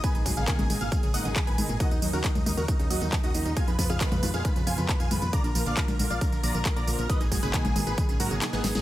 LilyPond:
<<
  \new Staff \with { instrumentName = "Supersaw synth" } { \time 4/4 \key aes \dorian \tempo 4 = 136 <ces'' aes''>16 aes'16 aes'16 <aes' f''>16 aes'16 aes'16 aes'16 <aes' f''>16 aes'16 aes'16 <ees'' ges''>16 aes'16 aes'16 <ces'' aes''>16 aes'16 aes'16 | <ges' ees''>16 ees'16 ees'16 <ges' bes'>16 ees'16 ees'16 ees'16 <ges' bes'>16 ees'16 ees'16 <ges' ees''>16 ees'16 ees'16 <ges' ees''>16 ees'16 ees'16 | <f'' aes''>16 ces''16 ces''16 <aes' f''>16 ces''16 ces''16 ces''16 <aes' f''>16 ces''16 ces''16 <f'' aes''>16 ces''16 ces''16 <f'' aes''>16 ces''16 ces''16 | <d'' bes''>16 bes'16 bes'16 <d'' f''>16 bes'16 bes'16 bes'16 <d'' f''>16 bes'16 bes'16 <d'' bes''>16 bes'16 bes'16 <d'' bes''>16 bes'16 bes'16 |
<ces'' ees''>16 aes'16 aes'16 <aes' ces''>16 aes'16 aes'16 aes'16 <aes' ces''>16 aes'16 aes'16 <ges' bes'>16 aes'16 aes'16 <ces' aes'>16 aes'16 aes'16 | }
  \new Staff \with { instrumentName = "String section" } { \clef bass \time 4/4 \key aes \dorian <ces aes bes ees'>8 <ces aes bes ees'>16 <ces aes bes ees'>16 <ces aes bes ees'>8 <ces aes bes ees'>16 <ces aes bes ees'>16 <ces aes bes ees'>8 <ces aes bes ees'>8 r16 <ces aes bes ees'>16 <ces aes bes ees'>8 | <des ges bes ees'>8 <des ges bes ees'>16 <des ges bes ees'>16 <des ges bes ees'>8 <des ges bes ees'>16 <des ges bes ees'>16 <des ges bes ees'>8 <des ges bes ees'>8 r16 <des ges bes ees'>16 <des ges bes ees'>8 | <ces f aes f'>8 <ces f aes f'>16 <ces f aes f'>16 <ces f aes f'>8 <ces f aes f'>16 <ces f aes f'>16 <ces f aes f'>8 <ces f aes f'>8 r16 <ces f aes f'>16 <ces f aes f'>8 | <d f bes f'>8 <d f bes f'>16 <d f bes f'>16 <d f bes f'>8 <d f bes f'>16 <d f bes f'>16 <d f bes f'>8 <d f bes f'>8 r16 <d f bes f'>16 <d f bes f'>8 |
<ces aes bes ees'>8 <ces aes bes ees'>16 <ces aes bes ees'>16 <ces aes bes ees'>8 <ces aes bes ees'>16 <ces aes bes ees'>16 <ces aes bes ees'>8 <ces aes bes ees'>8 r16 <ces aes bes ees'>16 <ces aes bes ees'>8 | }
  \new Staff \with { instrumentName = "Synth arpeggio sound" } { \clef bass \time 4/4 \key aes \dorian ees16 ees'16 ges16 des16 ees16 des16 ees16 bes,16 ees16 des16 ges16 des16 ees16 ees16 ees16 bes,16 | ees16 ees'16 ges16 des16 ees16 des16 ees16 bes,16 ees16 des16 ges16 des16 ees16 ees16 ees16 bes,16 | ees16 ees'16 f16 des16 ees16 des16 ees16 bes,16 ees16 des16 f16 des16 ees16 ees16 ees16 bes,16 | d16 d'16 f16 d16 r16 d16 d16 bes,16 d16 d16 f16 d16 d16 d16 d16 bes,16 |
ees16 ees'16 ges16 des16 ees16 des16 ees16 bes,16 ees16 des16 ges16 des16 ees16 ees16 ees16 bes,16 | }
  \new Staff \with { instrumentName = "FM bass" } { \clef bass \time 4/4 \key aes \dorian r16 aes,,16 aes,,16 aes,,16 r16 aes,,16 aes,,16 aes,,16 r16 aes,,16 aes,,16 aes,,16 r16 aes,,16 aes,,16 aes,,16 | r16 ees,16 ees,16 ees,16 r16 ees,16 ees,16 ees,16 r16 ees,16 ees,16 ees,16 r16 ees,16 ees,16 ees,16 | r16 f,16 f,16 f,16 r16 f,16 f,16 f,16 r16 f,16 f,16 f,16 r16 f,16 f,16 f,16 | r16 bes,,16 bes,,16 bes,,16 r16 bes,,16 bes,,16 bes,,16 r16 bes,,16 bes,,16 bes,,16 r16 bes,,16 bes,,16 bes,,16 |
r16 aes,,16 aes,,16 aes,,16 r16 aes,,16 aes,,16 aes,,16 r16 aes,,16 aes,16 aes,,16 r16 aes,,16 aes,,16 aes,,16 | }
  \new DrumStaff \with { instrumentName = "Drums" } \drummode { \time 4/4 <hh bd tamb>16 <hh tamb>16 <hho bd tamb>16 <hh tamb>16 <hc hh bd tamb>16 <cgho hh tamb>16 <cgho hho tamb>16 <hh tamb>16 <hh bd tamb>16 <hh tamb>16 <hho tamb>16 <hh tamb>16 <hc hh bd tamb>16 <hh tamb>16 <cgho hho tamb>16 <hh tamb>16 | <hh bd tamb>16 <hh tamb>16 <hho tamb>16 <hh tamb>16 <hc hh bd tamb>16 <cgho hh tamb>16 <cgho hho tamb>16 <hh tamb>16 <hh bd tamb>16 <hh tamb>16 <hho tamb>16 <hh tamb>16 <hc hh bd tamb>16 <hh tamb>16 <hho tamb>16 <hh tamb>16 | <hh bd tamb>16 <hh tamb>16 <hho bd tamb>16 <hh tamb>16 <hc hh bd tamb>16 <cgho hh tamb>16 <cgho hho tamb>16 <hh tamb>16 <hh bd tamb>16 <hh tamb>16 <hho tamb>16 <hh tamb>16 <hc hh bd tamb>16 <hh tamb>16 <cgho hho tamb>16 <hh tamb>16 | <hh bd tamb>16 <hh tamb>16 <hho tamb>16 <hh tamb>16 <hc hh bd tamb>16 <cgho hh tamb>16 <cgho hho tamb>16 <hh tamb>16 <hh bd tamb>16 <hh tamb>16 <hho tamb>16 <hh tamb>16 <hc hh bd tamb>16 <hh tamb>16 <hho tamb>16 tamb16 |
<hh bd tamb>16 <hh tamb>16 <hho bd tamb>16 <hh tamb>16 <hc hh bd tamb>16 <cgho hh tamb>16 <cgho hho tamb>16 <hh tamb>16 <hh bd tamb>16 <hh tamb>16 <hho tamb>16 <hh tamb>16 <hc hh sn tamb>16 <hh sn tamb>16 <cgho hho sn tamb>16 <cgho hh sn tamb>16 | }
>>